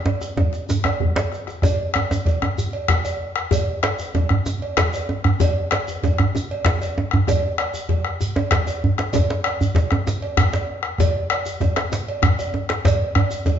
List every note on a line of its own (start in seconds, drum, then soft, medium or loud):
0.06 cowbell soft
0.06 djembe tone loud
0.21 bombo rim soft
0.21 djembe slap soft
0.21 djembe tone soft
0.21 shekere soft
0.37 bombo low medium
0.37 cowbell soft
0.37 djembe tone loud
0.37 djembe bass medium
0.53 djembe slap medium
0.53 shekere soft
0.69 djembe slap soft
0.69 djembe tone medium
0.69 djembe tone loud
0.69 shekere medium
0.84 bombo rim medium
0.84 cowbell soft
0.84 djembe tone loud
1.00 bombo low medium
1.00 djembe bass medium
1.16 bombo rim soft
1.16 cowbell soft
1.16 djembe slap loud
1.16 djembe bass soft
1.16 shekere soft
1.32 bombo rim soft
1.32 djembe slap medium
1.32 shekere soft
1.47 bombo rim soft
1.47 djembe slap medium
1.47 shekere soft
1.62 bombo rim soft
1.62 bombo low loud
1.62 cowbell medium
1.62 djembe slap medium
1.62 djembe tone medium
1.62 djembe tone loud
1.62 djembe bass medium
1.62 shekere medium
1.94 bombo rim medium
1.94 cowbell soft
1.94 djembe tone medium
2.11 djembe tone soft
2.11 djembe tone medium
2.11 shekere soft
2.26 bombo low medium
2.26 cowbell soft
2.26 djembe slap medium
2.26 djembe bass medium
2.26 shekere soft
2.42 bombo rim medium
2.42 djembe tone medium
2.58 djembe slap soft
2.58 djembe tone medium
2.58 shekere medium
2.73 cowbell soft
2.88 bombo rim loud
2.88 bombo low medium
2.88 djembe slap medium
2.88 djembe bass medium
3.05 cowbell soft
3.05 djembe tone medium
3.05 shekere soft
3.36 bombo rim medium
3.51 bombo rim soft
3.51 bombo low medium
3.51 cowbell medium
3.51 djembe slap medium
3.51 djembe tone medium
3.51 djembe bass medium
3.51 shekere medium
3.83 bombo rim medium
3.83 cowbell soft
3.83 djembe slap medium
3.99 djembe tone medium
3.99 shekere medium
4.14 bombo low medium
4.14 cowbell soft
4.14 djembe slap medium
4.14 djembe tone medium
4.14 djembe bass medium
4.14 shekere soft
4.29 bombo rim medium
4.29 djembe bass medium
4.46 djembe slap soft
4.46 djembe tone medium
4.46 shekere medium
4.62 cowbell soft
4.77 bombo rim medium
4.77 bombo low medium
4.77 djembe slap medium
4.77 djembe slap loud
4.77 djembe bass medium
4.93 cowbell soft
4.93 djembe tone medium
4.93 shekere soft
5.09 djembe tone medium
5.24 bombo rim medium
5.24 djembe bass medium
5.40 bombo rim soft
5.40 bombo low medium
5.40 cowbell medium
5.40 djembe slap medium
5.40 djembe tone medium
5.40 djembe bass medium
5.40 shekere medium
5.71 bombo rim medium
5.71 cowbell soft
5.71 djembe slap loud
5.88 djembe tone medium
5.88 shekere soft
6.03 bombo low medium
6.03 cowbell soft
6.03 djembe slap medium
6.03 djembe tone medium
6.03 djembe bass medium
6.03 shekere soft
6.18 bombo rim medium
6.18 djembe bass medium
6.35 djembe slap soft
6.35 djembe tone medium
6.35 shekere medium
6.51 cowbell soft
6.65 bombo rim medium
6.65 bombo low medium
6.65 djembe slap medium
6.65 djembe slap loud
6.65 djembe bass medium
6.81 cowbell soft
6.81 djembe tone medium
6.81 shekere soft
6.98 djembe tone medium
7.11 bombo rim medium
7.11 djembe bass medium
7.27 bombo rim soft
7.27 bombo low medium
7.27 cowbell medium
7.27 djembe slap medium
7.27 djembe tone medium
7.27 djembe bass medium
7.27 shekere medium
7.43 djembe slap soft
7.58 bombo rim medium
7.58 cowbell soft
7.58 djembe slap soft
7.74 djembe tone medium
7.74 shekere soft
7.89 bombo low medium
7.89 cowbell soft
7.89 djembe slap medium
7.89 djembe bass medium
8.05 bombo rim medium
8.21 djembe tone medium
8.21 shekere medium
8.36 bombo rim soft
8.36 cowbell soft
8.36 djembe tone loud
8.36 shekere soft
8.51 bombo rim medium
8.51 bombo low medium
8.51 djembe slap medium
8.51 djembe bass medium
8.67 cowbell soft
8.67 djembe slap soft
8.67 djembe tone medium
8.67 shekere soft
8.84 djembe bass medium
8.98 bombo rim medium
8.98 djembe slap medium
9.13 bombo rim soft
9.13 bombo low medium
9.13 cowbell medium
9.13 djembe slap medium
9.13 djembe tone medium
9.13 djembe bass medium
9.13 shekere medium
9.30 djembe slap medium
9.44 bombo rim medium
9.44 cowbell soft
9.61 djembe tone medium
9.61 djembe bass medium
9.61 shekere soft
9.75 bombo low medium
9.75 cowbell soft
9.75 djembe slap medium
9.75 djembe bass medium
9.75 shekere soft
9.91 bombo rim medium
9.91 djembe tone loud
10.07 djembe slap soft
10.07 djembe slap medium
10.07 djembe tone medium
10.07 shekere medium
10.22 cowbell soft
10.37 bombo rim medium
10.37 bombo low medium
10.37 djembe slap medium
10.37 djembe bass medium
10.53 cowbell soft
10.53 djembe slap medium
10.53 djembe tone medium
10.53 shekere soft
10.83 bombo rim medium
10.98 bombo rim soft
10.98 bombo low medium
10.98 cowbell medium
10.98 djembe slap medium
10.98 djembe tone medium
10.98 djembe bass medium
10.98 shekere medium
11.30 bombo rim medium
11.30 cowbell soft
11.46 djembe tone medium
11.46 shekere soft
11.60 bombo low medium
11.60 cowbell soft
11.60 djembe slap medium
11.60 djembe tone medium
11.60 djembe bass medium
11.60 shekere soft
11.76 bombo rim medium
11.76 djembe slap medium
11.92 djembe slap soft
11.92 djembe slap medium
11.92 djembe tone medium
11.92 shekere medium
12.08 cowbell soft
12.22 bombo rim medium
12.22 bombo low medium
12.22 djembe slap medium
12.22 djembe bass medium
12.39 cowbell soft
12.39 djembe tone medium
12.39 shekere soft
12.54 djembe tone medium
12.69 bombo rim medium
12.69 djembe slap medium
12.85 bombo rim soft
12.85 bombo low medium
12.85 cowbell medium
12.85 djembe slap medium
12.85 djembe tone medium
12.85 djembe bass medium
12.85 shekere medium
13.15 bombo rim medium
13.15 cowbell medium
13.15 djembe bass medium
13.30 djembe tone medium
13.30 shekere soft
13.45 bombo low medium
13.45 cowbell soft
13.45 djembe slap medium
13.45 djembe tone medium
13.45 djembe bass medium
13.45 shekere soft